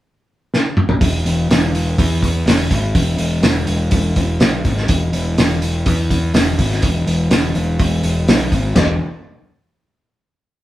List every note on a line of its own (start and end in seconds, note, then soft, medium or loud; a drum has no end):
0.54 snare medium
0.77 mid tom medium
0.89 floor tom medium
1.01 1.23 E1 medium
1.01 kick loud
1.01 open hi-hat medium
1.25 1.48 E1 medium
1.25 open hi-hat medium
1.50 1.94 E1 medium
1.50 snare loud
1.50 open hi-hat medium
1.75 open hi-hat medium
1.98 2.43 E2 medium
1.98 kick loud
1.98 open hi-hat medium
2.23 kick medium
2.23 open hi-hat medium
2.46 2.69 E1 medium
2.46 snare loud
2.46 open hi-hat medium
2.71 2.93 G#1 medium
2.71 kick medium
2.71 open hi-hat medium
2.95 3.17 E1 medium
2.95 kick loud
2.95 open hi-hat medium
3.18 3.41 E1 medium
3.18 open hi-hat medium
3.43 3.66 E1 medium
3.43 snare loud
3.43 open hi-hat medium
3.67 3.90 E1 medium
3.67 open hi-hat medium
3.91 4.14 E1 medium
3.91 kick loud
3.91 open hi-hat medium
4.16 4.39 E1 medium
4.16 kick medium
4.16 open hi-hat medium
4.40 4.63 B1 medium
4.40 snare loud
4.40 open hi-hat medium
4.65 4.87 G#1 medium
4.65 kick medium
4.65 open hi-hat medium
4.77 snare soft
4.88 5.12 E1 loud
4.88 kick loud
4.88 open hi-hat medium
5.13 5.36 E1 medium
5.13 open hi-hat medium
5.38 5.83 E1 medium
5.38 snare loud
5.38 open hi-hat medium
5.62 open hi-hat medium
5.86 6.31 E2 medium
5.86 kick loud
5.86 open hi-hat medium
6.11 kick medium
6.11 open hi-hat medium
6.34 6.57 E1 medium
6.34 snare loud
6.34 open hi-hat medium
6.59 6.81 G#1 medium
6.59 kick medium
6.59 open hi-hat medium
6.71 snare soft
6.82 7.05 E1 loud
6.82 kick loud
6.82 open hi-hat medium
7.07 7.29 E1 medium
7.07 open hi-hat medium
7.31 7.54 E1 medium
7.31 snare loud
7.31 open hi-hat medium
7.55 7.78 E1 medium
7.55 open hi-hat medium
7.79 8.02 E1 medium
7.79 kick loud
7.79 open hi-hat medium
8.03 8.26 E1 medium
8.03 open hi-hat medium
8.28 8.50 B1 medium
8.28 snare loud
8.28 open hi-hat medium
8.52 8.74 G#1 medium
8.52 kick medium
8.52 open hi-hat soft
8.75 8.98 E1 medium
8.75 snare medium
8.75 floor tom loud
8.75 crash medium